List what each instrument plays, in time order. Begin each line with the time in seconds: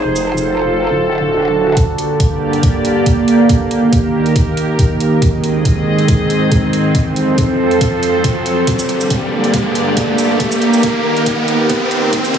Already playing: ambient pad C5
0.04 wobble bass F1, ambient pad A4
0.16 shaker
0.37 shaker
0.90 wobble bass D1
1.77 ambient pad G2 D3 A#3 G4 D5, kick, closed hi-hat, riser
1.98 closed hi-hat
2.20 kick, closed hi-hat
2.53 closed hi-hat
2.63 kick, closed hi-hat
2.85 closed hi-hat
3.06 kick, closed hi-hat
3.28 closed hi-hat
3.49 ambient pad D#2 D#3 G4 A#4, kick, closed hi-hat
3.71 closed hi-hat
3.93 kick, closed hi-hat
4.26 closed hi-hat
4.36 kick, closed hi-hat
4.57 closed hi-hat
4.79 kick, closed hi-hat
5.00 closed hi-hat
5.22 ambient pad G#2 C4 G#4 D#5, kick, closed hi-hat
5.44 closed hi-hat
5.65 kick, closed hi-hat
5.99 closed hi-hat
6.08 kick, closed hi-hat
6.30 closed hi-hat
6.52 kick, closed hi-hat
6.73 closed hi-hat
6.95 ambient pad F2 F3 A4 C5, kick, closed hi-hat
7.16 closed hi-hat
7.38 kick, closed hi-hat
7.71 closed hi-hat
7.81 kick, closed hi-hat
8.03 closed hi-hat
8.24 kick, closed hi-hat
8.46 closed hi-hat
8.67 ambient pad G2 D3 A#3 G4 D5, kick, closed hi-hat
8.79 shaker
8.89 closed hi-hat
9.01 shaker
9.10 kick, closed hi-hat
9.44 closed hi-hat
9.54 kick, closed hi-hat
9.75 closed hi-hat
9.97 kick, closed hi-hat
10.18 closed hi-hat, shaker
10.40 ambient pad D#2 D#3 A#4, kick, closed hi-hat
10.52 shaker
10.62 closed hi-hat
10.73 shaker
10.83 kick, closed hi-hat
11.16 closed hi-hat
11.26 kick, closed hi-hat
11.48 closed hi-hat
11.70 kick, closed hi-hat
11.91 closed hi-hat
12.13 ambient pad G#2 C4 G#4 D#5, kick, closed hi-hat
12.24 shaker
12.34 kick, closed hi-hat